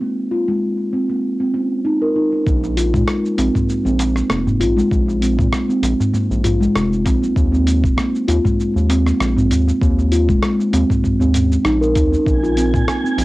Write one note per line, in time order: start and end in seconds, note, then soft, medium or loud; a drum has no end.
0.01 0.30 A#3 medium
0.31 0.47 F4 medium
0.48 0.92 G#3 medium
0.93 1.08 C4 medium
1.09 1.23 A#3 medium
1.40 1.54 C4 medium
1.54 1.70 C#4 medium
1.85 1.95 D#4 medium
2.02 2.15 A#4 medium
2.16 2.31 D#4 medium
2.32 2.45 C#4 medium
2.46 2.96 A#1 loud
2.46 2.76 A#3 medium
2.46 kick loud
2.46 cabasa soft
2.63 darbuka tek soft
2.63 cabasa soft
2.77 2.92 F4 medium
2.77 closed hi-hat loud
2.77 cabasa medium
2.93 3.03 A#2 loud
2.93 3.37 G#3 medium
2.93 kick loud
2.93 darbuka ka medium
2.93 cabasa soft
3.08 cross-stick loud
3.08 cabasa soft
3.25 cabasa soft
3.38 3.49 A#1 loud
3.38 3.53 C4 medium
3.38 closed hi-hat loud
3.38 darbuka tek medium
3.38 cabasa medium
3.55 3.68 A#3 medium
3.55 kick medium
3.55 darbuka dum loud
3.55 cabasa soft
3.70 cabasa soft
3.85 4.22 A#1 medium
3.85 3.99 C4 medium
3.85 cabasa soft
3.99 closed hi-hat loud
3.99 darbuka ka medium
3.99 darbuka tek medium
3.99 cabasa medium
4.16 cross-stick soft
4.16 cabasa soft
4.30 4.62 F1 medium
4.30 4.59 A#3 medium
4.30 cross-stick loud
4.30 cabasa soft
4.47 darbuka dum medium
4.47 cabasa soft
4.60 4.82 A#1 medium
4.60 4.76 F4 medium
4.60 closed hi-hat loud
4.60 cabasa medium
4.77 5.20 G#3 loud
4.77 darbuka ka medium
4.77 cabasa soft
4.91 5.40 A#1 loud
4.91 kick loud
4.91 cabasa soft
5.08 darbuka tek soft
5.08 cabasa soft
5.22 5.37 C4 medium
5.22 closed hi-hat loud
5.22 cabasa medium
5.38 5.48 A#2 loud
5.38 5.52 A#3 medium
5.38 kick loud
5.38 darbuka ka medium
5.38 cabasa soft
5.53 cross-stick loud
5.53 cabasa soft
5.69 5.82 C4 medium
5.69 darbuka ka soft
5.69 cabasa soft
5.83 5.94 A#1 loud
5.83 closed hi-hat medium
5.83 darbuka tek medium
5.83 cabasa medium
6.00 darbuka dum loud
6.00 cabasa soft
6.14 6.43 A#3 medium
6.14 darbuka dum loud
6.14 cabasa soft
6.30 6.67 A#1 medium
6.30 cabasa soft
6.44 6.59 F4 medium
6.44 closed hi-hat medium
6.44 darbuka ka medium
6.44 darbuka dum loud
6.44 cabasa medium
6.61 7.04 G#3 loud
6.61 cabasa soft
6.75 7.07 F1 medium
6.75 cross-stick loud
6.75 cabasa soft
6.93 cabasa soft
7.05 7.27 A#1 medium
7.05 7.20 C4 medium
7.05 kick loud
7.05 closed hi-hat medium
7.05 darbuka tek medium
7.05 cabasa medium
7.22 7.35 A#3 medium
7.22 cabasa soft
7.36 7.85 D#2 loud
7.36 kick loud
7.36 cabasa soft
7.52 7.66 C4 medium
7.52 darbuka tek soft
7.52 cabasa soft
7.67 closed hi-hat medium
7.67 cabasa medium
7.83 7.93 D#1 loud
7.83 kick loud
7.83 darbuka ka soft
7.83 cabasa soft
7.97 8.26 A#3 medium
7.97 cross-stick loud
7.97 cabasa soft
8.15 cabasa soft
8.28 8.39 D#2 loud
8.28 8.43 F4 medium
8.28 closed hi-hat medium
8.28 darbuka tek medium
8.28 cabasa medium
8.44 8.88 G#3 medium
8.44 kick medium
8.44 darbuka dum loud
8.44 cabasa soft
8.60 cabasa soft
8.76 9.12 D#2 medium
8.76 cabasa soft
8.89 9.04 C4 medium
8.89 closed hi-hat medium
8.89 darbuka ka medium
8.89 darbuka tek medium
8.89 cabasa medium
9.06 9.19 A#3 medium
9.06 cross-stick soft
9.06 cabasa soft
9.20 9.52 A#1 medium
9.20 cross-stick loud
9.20 cabasa soft
9.37 9.50 C4 medium
9.37 darbuka dum loud
9.37 cabasa soft
9.51 9.72 D#2 medium
9.51 closed hi-hat medium
9.51 cabasa medium
9.68 darbuka ka soft
9.68 cabasa soft
9.81 10.30 D#2 loud
9.81 10.10 A#3 medium
9.81 kick loud
9.81 cabasa soft
9.99 darbuka tek soft
9.99 cabasa soft
10.12 10.27 F4 medium
10.12 closed hi-hat medium
10.12 cabasa medium
10.29 10.38 D#1 loud
10.29 10.72 G#3 loud
10.29 kick loud
10.29 darbuka ka soft
10.29 cabasa soft
10.43 cross-stick loud
10.43 cabasa soft
10.59 darbuka ka soft
10.59 cabasa soft
10.73 10.84 D#2 loud
10.73 10.88 C4 medium
10.73 closed hi-hat medium
10.73 darbuka tek medium
10.73 cabasa medium
10.90 11.03 A#3 medium
10.90 kick medium
10.90 darbuka dum loud
10.90 cabasa soft
11.04 kick medium
11.04 darbuka dum medium
11.04 cabasa soft
11.20 11.57 D#2 medium
11.20 11.33 C4 medium
11.20 cabasa soft
11.34 11.50 C#4 medium
11.34 closed hi-hat medium
11.34 darbuka ka medium
11.34 darbuka dum medium
11.34 cabasa medium
11.52 cabasa soft
11.65 11.97 A#1 medium
11.65 11.74 D#4 medium
11.65 cross-stick medium
11.65 cabasa soft
11.81 11.95 A#4 medium
11.81 cabasa soft
11.95 12.17 D#2 medium
11.95 12.11 D#4 medium
11.95 kick loud
11.95 closed hi-hat medium
11.95 darbuka tek medium
11.95 cabasa medium
12.12 12.25 C#4 medium
12.12 cabasa soft
12.26 12.75 A#1 loud
12.26 13.25 G#5 medium
12.26 kick loud
12.26 cabasa soft
12.43 12.55 F4 medium
12.43 darbuka tek soft
12.43 cabasa soft
12.57 12.72 C4 medium
12.57 closed hi-hat medium
12.57 cabasa medium
12.73 12.83 A#2 medium
12.73 12.87 A#3 medium
12.73 kick loud
12.73 darbuka ka soft
12.73 cabasa soft
12.88 cross-stick medium
12.88 cabasa soft
13.04 13.17 C4 medium
13.04 cabasa soft
13.18 13.25 A#1 loud
13.18 closed hi-hat medium
13.18 darbuka tek medium
13.18 cabasa medium